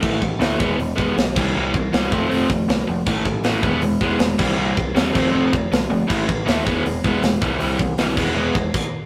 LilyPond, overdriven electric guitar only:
\new Staff \with { instrumentName = "Overdriven electric guitar" } { \clef bass \time 4/4 \key e \phrygian \tempo 4 = 158 <a, e a>8 <a, e>8 <a, e a>8 <e gis b>8 <e gis>8 <e gis b>8 <e gis>8 <c e g>8 | <c e g>8 <c e>8 <c e g>8 <f a c'>8 <f a c'>8 <f a>8 <f a>8 <f a>8 | <a, e a>8 <a, e>8 <a, e a>8 <e gis b>8 <e gis>8 <e gis b>8 <e gis>8 <c e g>8 | <c e g>8 <c e>8 <c e g>8 <f a c'>8 <f a c'>8 <f a>8 <f a>8 <f a>8 |
<a, e a>8 <a, e>8 <a, e a>8 <e gis b>8 <e gis>8 <e gis b>8 <e gis>8 <c e g>8 | <c e g>8 <c e>8 <c e g>8 <e gis b>8 <e gis b>8 <e gis>8 r4 | }